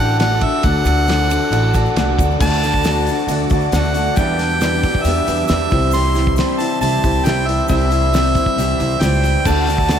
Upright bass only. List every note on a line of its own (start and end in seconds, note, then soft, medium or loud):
0.00 0.42 A1 loud
0.64 0.80 D2 loud
0.85 1.36 D2 loud
1.51 1.85 A1 loud
1.95 2.16 C2 medium
2.18 2.38 D2 loud
2.40 3.07 D2 loud
3.27 3.44 D2 medium
3.50 3.67 D2 medium
3.72 4.06 D2 medium
4.17 4.84 E2 loud
5.05 5.22 E2 medium
5.28 5.44 E2 loud
5.50 5.66 E2 loud
5.72 6.38 C2 loud
6.81 6.98 C2 medium
7.04 7.21 C2 medium
7.25 7.58 C2 loud
7.69 8.36 C2 loud
8.56 8.73 C2 medium
8.80 8.96 C2 medium
9.01 9.34 C#2 medium
9.46 9.99 D2 loud